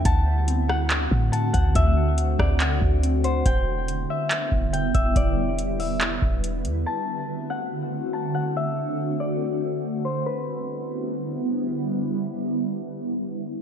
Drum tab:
HH |x-x-x-xx|x-x-x-xx|x-x-x-xx|x-xox-xx|
CP |----x---|----x---|----x---|----x---|
SD |---r----|---r----|--------|--------|
BD |o----o-o|o--o-o--|o----o-o|o----o--|

HH |--------|--------|--------|--------|
CP |--------|--------|--------|--------|
SD |--------|--------|--------|--------|
BD |--------|--------|--------|--------|